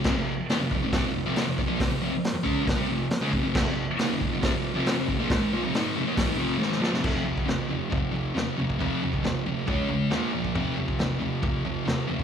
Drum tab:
CC |x---------------|----------------|x---------------|----------------|
HH |----o---o---o---|o---o---o---o---|----o---o---o---|o---o---o-------|
SD |o---o---o---o---|o---o---o---o---|o---o---o---o---|o---o---o---oooo|
FT |----------------|----------------|----------------|----------------|
BD |o-----o-o-----o-|o-----o-o-----o-|o-----o-o-----o-|o-------o-------|

CC |x---------------|----------------|----------------|
HH |----------------|----------------|----------------|
SD |----o-------o---|----o-------o---|----o-------o---|
FT |o-o-o-o-o-o-o-o-|o-o-o-o-o-o-o-o-|o-o-o-o-o-o-o-o-|
BD |o--o----o------o|o--o----o------o|o--o----o------o|